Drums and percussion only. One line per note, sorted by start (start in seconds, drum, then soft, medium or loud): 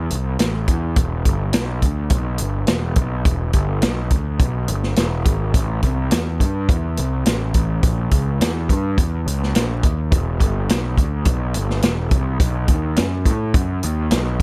0.10 closed hi-hat medium
0.39 snare medium
0.39 closed hi-hat medium
0.68 kick medium
0.68 closed hi-hat medium
0.96 kick loud
0.96 closed hi-hat medium
1.25 kick medium
1.25 closed hi-hat medium
1.53 snare loud
1.53 closed hi-hat medium
1.82 kick medium
1.82 closed hi-hat medium
2.10 kick loud
2.10 closed hi-hat medium
2.38 closed hi-hat medium
2.67 snare loud
2.67 closed hi-hat medium
2.96 kick medium
2.96 closed hi-hat medium
3.25 kick loud
3.25 closed hi-hat medium
3.53 kick medium
3.53 closed hi-hat medium
3.82 snare loud
3.82 closed hi-hat medium
4.10 kick medium
4.10 closed hi-hat medium
4.40 kick loud
4.40 closed hi-hat medium
4.68 closed hi-hat medium
4.83 snare soft
4.96 snare loud
4.96 closed hi-hat medium
5.25 kick medium
5.25 closed hi-hat medium
5.54 kick loud
5.54 closed hi-hat medium
5.83 kick medium
5.83 closed hi-hat medium
6.11 snare loud
6.11 closed hi-hat medium
6.40 kick medium
6.40 closed hi-hat medium
6.69 kick loud
6.69 closed hi-hat medium
6.97 closed hi-hat medium
7.26 snare loud
7.26 closed hi-hat medium
7.54 kick medium
7.54 closed hi-hat medium
7.83 kick loud
7.83 closed hi-hat medium
8.11 kick medium
8.11 closed hi-hat medium
8.41 snare loud
8.41 closed hi-hat medium
8.69 kick medium
8.69 closed hi-hat medium
8.98 kick loud
8.98 closed hi-hat medium
9.28 closed hi-hat medium
9.43 snare soft
9.55 snare loud
9.55 closed hi-hat medium
9.83 kick medium
9.83 closed hi-hat medium
10.12 kick loud
10.12 closed hi-hat medium
10.40 kick medium
10.40 closed hi-hat medium
10.69 snare loud
10.69 closed hi-hat medium
10.98 kick medium
10.98 closed hi-hat medium
11.25 kick loud
11.25 closed hi-hat medium
11.54 closed hi-hat medium
11.70 snare soft
11.82 snare loud
11.82 closed hi-hat medium
12.11 kick medium
12.11 closed hi-hat medium
12.40 kick loud
12.40 closed hi-hat medium
12.68 kick medium
12.68 closed hi-hat medium
12.96 snare loud
12.96 closed hi-hat medium
13.26 kick medium
13.26 closed hi-hat medium
13.54 kick loud
13.54 closed hi-hat medium
13.83 closed hi-hat medium
14.11 snare loud
14.11 closed hi-hat medium